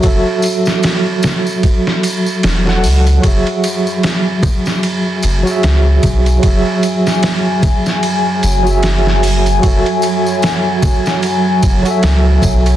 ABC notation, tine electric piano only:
X:1
M:4/4
L:1/16
Q:"Swing 16ths" 1/4=75
K:F#m
V:1 name="Tine electric piano"
[F,FAe]8- [F,FAe]3 z2 [F,FAf]3 | [F,FGe]8- [F,FGe]3 [F,FGe]4- [F,FGe] | [F,FGe]8- [F,FGe]3 [F,FGe]4- [F,FGe] | [F,FAe]8- [F,FAe]3 [F,FAe]4- [F,FAe] |]